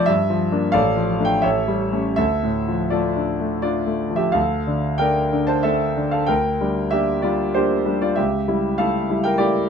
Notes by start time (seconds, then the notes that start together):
Already playing: F2 C3 F3 A3 F4 A4 D5 F5 A5
0.06 G2 E5
0.30 F3
0.52 A#3 D4
0.72 A1 A4 D5 F5
0.97 F3
1.19 A3 D4
1.25 G5
1.42 A1 A4 C#5 E5
1.68 G3
1.93 A3 C#4
2.16 D2 A4 E5
2.43 A2
2.68 F3
2.90 A3 F4 A4 D5
3.16 D4
3.40 A3
3.62 D4 F4 D5
3.87 A3
4.10 F3
4.16 G4 E5
4.32 D2 A4 F5
4.67 D3 D4
4.98 A3 D4 A#4 G5
5.32 D3 D4
5.47 C5 A5
5.63 A3 D4 A4 E5
5.97 D3 D4
6.11 A4 F5
6.26 D2 A#4 G5
6.61 G3 D4
6.91 A#3 D4 G4 E5
7.22 G3 D4 F4 D5
7.54 A#3 D4 G4 C5
7.86 G3 D4
8.01 F4 D5
8.16 C#2 G4 E5
8.48 G3 E4
8.78 A3 E4 A4 F5
9.10 G3 E4
9.24 A#4 G5
9.38 A3 E4 G4 D5